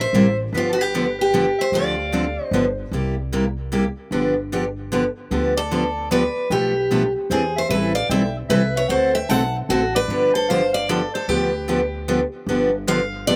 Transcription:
0.00 C5 E5
0.13 A1 C3 G3 A#3 E4 G4
0.52 G1 D3 F3 B3 D4 G4 B4
0.57 F4
0.69 F#4 A4
0.78 G4 B4
0.94 D3 F3 B3 D4 G4
1.19 G4 B4
1.34 D3 F3 B3 D4 G4
1.58 C5 E5
1.72 D2 D3 F3 C4 D4 A4 D5 F5
2.12 D3 F3 C4 D4 A4
2.44 C5 D#5
2.51 G1 D3 F3 B3 D4 G4
2.91 C2 C3 G3 A#3 E4 G4
3.32 C3 G3 A#3 E4 G4
3.72 C3 G3 A#3 E4 G4
4.11 G1 D3 F3 B3 D4 G4
4.52 D3 F3 B3 D4 G4
4.92 D3 F3 B3 D4 G4
5.31 D2 D3 F3 B3 D4 G4
5.56 A4 D5
5.71 D3 F3 B3 D4 G4
6.11 D3 F3 B3 D4 G4 B4 D5
6.50 B1 B2 F3 A3 D4 G4 A4 B4
6.91 B2 F3 A3 D4 A4
7.30 E2 E3 C4 D4 G#4 C5
7.56 C5 E5
7.68 A1 E3 G3 C4 E4 A4 B4 E5
7.94 D5 F5
8.09 B1 E3 G3 C4 E4 A4 E5 G5
8.49 C2 E3 G3 C4 E4 A4 B4 E5
8.76 C#5 E5
8.88 D2 D3 A3 C4 F#4 A4 C5 F#5
9.14 E5 G5
9.29 B1 D3 A3 C4 F#4 A4 F#5 A5
9.69 A1 D3 A3 C4 F#4 A4
9.95 B4 D5
10.08 G1 D3 F3 B3 D4 G4
10.33 A4 C5
10.49 D3 F3 B3 D4 G4 C5 F5
10.73 D5 F5
10.88 D3 F3 B3 D4 G4 A4 D5
11.13 A4 C5
11.28 D2 D3 F3 B3 D4 G4 B4
11.68 D3 F3 B3 D4 G4
12.08 D3 F3 B3 D4 G4
12.47 G1 D3 F3 B3 D4 G4
12.87 D3 F3 B3 D4 G4 F5
13.27 D3 F3 B3 D4 G4 D5

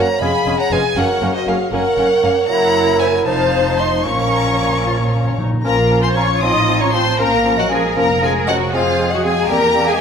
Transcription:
Already playing: C#5 A#5
0.20 F1 F2 G#3 C#4 G#4 F5 G#5 B5
0.45 F1 F2 G#3 C#4 G#4
0.58 C#5 F#5 A#5
0.71 F1 F2 G#3 C#4 G#4 B4 F5 G#5
0.96 F#1 F#2 A#3 C#4 F#4 A#4 C#5 F#5
1.21 F#1 F#2 A#3 C#4 A#4
1.34 F#4 C5 D#5
1.47 F#1 F#2 A#3 C#4 G#4 A#4 C#5 F5
1.71 F#1 F#2 A#3 C#4 A#4 C#5 F#5
1.97 F#1 F#2 A#3 C#4 A#4
2.23 F#1 F#2 A#3 C#4 A#4
2.48 F#1 F#2 F#3 E4 A#4 E5 F#5 A#5
3.00 C5 E5 G#5
3.26 F1 F2 F3 D#4 C5 F5 A5
3.78 D#5 A5 C6
4.04 A#1 A#2 F3 C#4 A#4 C#5 F5 A#5 C#6
4.13 A#2
4.21 A#2
4.29 A#2
4.37 A#2
4.45 A#2
4.52 A#2
4.60 A#2
4.69 A#2
4.76 A#2
4.84 A#2 F4
4.92 A#2
5.00 A#2
5.07 A#2
5.13 A#2 C#4
5.23 A#2
5.30 A#2
5.38 A#2 D#4
5.45 A#2
5.53 A#2
5.64 A#1 F3 A#3 C#4 F4 A#4 F5 A#5
5.90 F3 C#4
6.02 C4 C5 G#5 C6
6.15 F3 C#4 C#5 A#5 C#6
6.40 A1 F3 C4 D#4 D#5 C6 D#6
6.67 F3 C4
6.80 C#4 C#5 A#5 C#6
6.92 F3 C4 C5 A5 C6
7.19 A#1 F3 A#3 C#4 A#4 F5 A#5
7.44 F3 C#4
7.58 F#3 F#4 D#5 F#5
7.70 F3 G#3 C#4 G#4 F5 G#5
7.96 F1 F3 A#3 C#4 A#4 F5 A#5
8.21 F3 G#3 C#4 G#4 F5 G#5
8.47 F3 F#3 C#4 F#4 D#5 F#5
8.73 F2 F3 G#3 C4 F4 G#4 C5 F5
8.99 G#3 C4
9.10 F#3 F#4 D#5 F#5
9.24 G#3 C4 G#4 F5 G#5
9.48 E2 G3 A#3 C4 G4 A#4 G5 A#5
9.75 G3 C4
9.86 G#3 G#4 F5 G#5

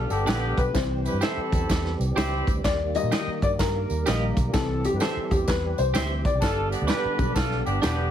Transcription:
Already playing: D3 G3 B3 G4
0.10 G1 B3 D4 G4 A4, closed hi-hat, tambourine
0.26 A#1 B3 D4 G4 B4, snare, closed hi-hat, tambourine
0.57 B1 B4, kick, closed hi-hat, tambourine
0.73 C2 E3 G3 C4 C5, kick, snare, closed hi-hat, tambourine
1.05 E4 G4 B4, closed hi-hat, tambourine
1.13 G2
1.21 C4 E4 G4 A4 C5 E5, snare, closed hi-hat, tambourine
1.37 muted fingered electric bass stroke
1.52 E2, kick, closed hi-hat, tambourine
1.69 E2, kick, snare, closed hi-hat, tambourine
1.85 snare
1.99 C2, closed hi-hat, tambourine
2.16 C#2 C4 E4 G4 C5 E5, snare, closed hi-hat, tambourine
2.47 D2, kick, closed hi-hat, tambourine
2.64 D#2 D#3 A#3 D5, kick, snare, closed hi-hat, tambourine
2.94 D#3 G3 A#3 D#5, closed hi-hat, tambourine
3.03 A#2
3.12 G4 A#4 D#5, snare, closed hi-hat, tambourine
3.27 muted fingered electric bass stroke
3.42 G2 D5, kick, closed hi-hat, tambourine
3.59 G2 A#4, kick, snare, closed hi-hat, tambourine
3.90 D#2, closed hi-hat, tambourine
4.06 A#1 D#3 G3 A#3 G4 A#4 D#5, snare, closed hi-hat, tambourine
4.36 B1, kick, closed hi-hat, tambourine
4.53 C2 E3 G3 C4 A4, kick, snare, closed hi-hat, tambourine
4.84 G4, closed hi-hat, tambourine
4.93 G2 B4
5.00 G4 A4 C5 E5, snare, closed hi-hat, tambourine
5.17 muted fingered electric bass stroke
5.31 E2 G4, kick, closed hi-hat, tambourine
5.48 E2 B4, kick, snare, closed hi-hat, tambourine
5.78 C2 C5, closed hi-hat, tambourine
5.94 D2 G4 C5 E5, snare, closed hi-hat, tambourine
6.25 D5, kick, closed hi-hat, tambourine
6.34 C2
6.41 G1 D3 B3 D4 F4 A4, kick, snare, closed hi-hat, tambourine
6.71 B3 D4 G4, closed hi-hat, tambourine
6.81 D2
6.87 D4 G4 B4, snare, closed hi-hat, tambourine
7.05 muted fingered electric bass stroke
7.18 B1 D3 G3 B3, kick, closed hi-hat, tambourine
7.35 B1 D4 F4 A4, kick, snare, closed hi-hat, tambourine
7.51 snare
7.65 G1 B3 D4 G4, closed hi-hat, tambourine
7.82 E1 B3 D4 G4 B4, snare, closed hi-hat, tambourine

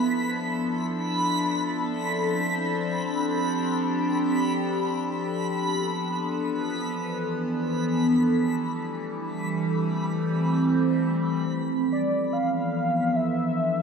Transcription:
Already playing: F3 B3 D4 E4 A4 B5
1.68 C4
2.97 G4
5.38 B3
6.30 E3
8.15 G3
8.61 A3
9.65 C4
11.49 F3
11.79 B3
11.92 D5
12.33 F5
12.87 D4
13.16 E5

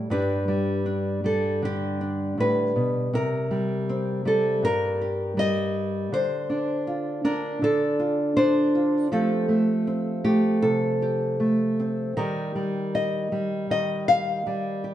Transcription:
Already playing: G3 C5
0.10 G2 G3 D4 G4 B4
0.48 G3
0.86 D4
1.24 G3 A4
1.62 D3 G4
2.01 D4
2.38 A2 B4
2.76 B2
3.13 C3 A#4
3.51 G3
3.89 C4
4.25 G3 A4
4.62 G2 A#4
5.01 G4
5.37 G3 D#5
6.12 D3 C5
6.50 D4
6.87 F4
7.25 D4 A#4
7.62 D3 A4
8.00 F4
8.37 D4 C5
8.75 F4
9.12 F3 A3 C4 G4 A4
9.49 A3
9.87 C4
10.24 A3 G4
10.62 C3 A4
11.02 G4
11.40 A3
11.80 C4
12.17 D#3 G3 G4 A#4
12.55 G3
12.95 D#5
13.32 G3
13.70 D#3 D#5
14.08 F5
14.47 G3
14.84 G4

